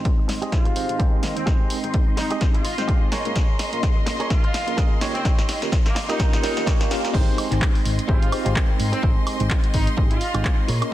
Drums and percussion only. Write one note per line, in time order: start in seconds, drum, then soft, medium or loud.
0.05 kick loud
0.05 closed hi-hat medium
0.29 snare soft
0.29 open hi-hat loud
0.42 closed hi-hat medium
0.52 kick loud
0.52 snare soft
0.52 closed hi-hat medium
0.65 closed hi-hat soft
0.76 open hi-hat loud
0.89 closed hi-hat medium
1.00 kick loud
1.00 closed hi-hat medium
1.23 snare medium
1.23 open hi-hat loud
1.37 closed hi-hat medium
1.47 kick loud
1.47 snare medium
1.47 closed hi-hat medium
1.70 open hi-hat loud
1.84 closed hi-hat medium
1.94 kick loud
1.94 closed hi-hat medium
2.17 snare medium
2.17 open hi-hat loud
2.31 closed hi-hat medium
2.41 kick loud
2.41 snare medium
2.41 closed hi-hat medium
2.54 closed hi-hat soft
2.65 open hi-hat loud
2.78 snare medium
2.78 closed hi-hat medium
2.89 kick loud
2.89 closed hi-hat medium
3.12 snare medium
3.12 open hi-hat loud
3.25 closed hi-hat medium
3.36 kick loud
3.36 snare medium
3.36 closed hi-hat medium
3.59 snare medium
3.59 open hi-hat loud
3.73 closed hi-hat medium
3.83 kick loud
3.83 snare medium
3.83 closed hi-hat medium
4.07 snare medium
4.07 open hi-hat loud
4.20 closed hi-hat medium
4.30 kick loud
4.30 snare medium
4.30 closed hi-hat medium
4.44 closed hi-hat soft
4.54 snare medium
4.54 open hi-hat loud
4.68 closed hi-hat medium
4.78 kick loud
4.78 snare medium
4.78 closed hi-hat medium
5.01 snare medium
5.01 open hi-hat loud
5.15 closed hi-hat medium
5.25 kick loud
5.25 snare medium
5.25 closed hi-hat medium
5.38 snare medium
5.49 snare medium
5.49 open hi-hat loud
5.62 snare medium
5.62 closed hi-hat soft
5.72 kick loud
5.72 snare loud
5.72 closed hi-hat medium
5.86 snare medium
5.86 closed hi-hat soft
5.96 snare loud
5.96 open hi-hat loud
6.09 snare medium
6.09 closed hi-hat medium
6.20 kick loud
6.20 snare loud
6.20 closed hi-hat medium
6.33 snare medium
6.33 closed hi-hat soft
6.43 snare loud
6.43 open hi-hat loud
6.57 snare loud
6.57 closed hi-hat medium
6.67 kick loud
6.67 snare loud
6.67 closed hi-hat medium
6.81 snare loud
6.81 closed hi-hat soft
6.91 snare loud
6.91 open hi-hat loud
7.05 snare medium
7.05 closed hi-hat soft
7.14 kick loud
7.14 crash loud
7.38 open hi-hat loud
7.38 high woodblock medium
7.52 clap soft
7.52 closed hi-hat medium
7.62 kick loud
7.62 clap loud
7.75 open hi-hat medium
7.85 open hi-hat loud
7.99 closed hi-hat medium
8.09 kick loud
8.22 closed hi-hat medium
8.32 open hi-hat loud
8.32 high woodblock medium
8.46 closed hi-hat medium
8.56 kick loud
8.56 clap loud
8.80 open hi-hat loud
8.93 closed hi-hat medium
9.03 kick loud
9.27 open hi-hat loud
9.27 high woodblock medium
9.40 closed hi-hat medium
9.50 kick loud
9.50 clap loud
9.64 closed hi-hat medium
9.74 kick medium
9.74 open hi-hat loud
9.87 closed hi-hat medium
9.98 kick loud
10.11 closed hi-hat medium
10.21 open hi-hat loud
10.35 closed hi-hat medium
10.35 high woodblock medium
10.45 kick loud
10.45 clap loud
10.68 open hi-hat loud
10.82 closed hi-hat medium
10.82 high woodblock medium